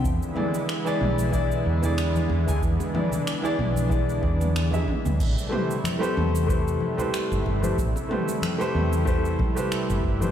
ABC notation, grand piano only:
X:1
M:4/4
L:1/16
Q:"Swing 16ths" 1/4=93
K:Am
V:1 name="Grand piano"
z2 [E,E^Gd] z2 [E,EGd]3 [E,EGd]3 [E,EGd]4 [E,EG^g] | z2 [E,E^Gd] z2 [E,EGd]3 [E,EGd]2 [E,EGd]3 [E,EGe]3 | z2 [A,GBc] z2 [A,GBc]3 [A,GBc]3 [A,GBc]4 [A,GBc] | z2 [A,GBc] z2 [A,GBc]3 [A,GBc]3 [A,GBc]4 [A,GBc] |]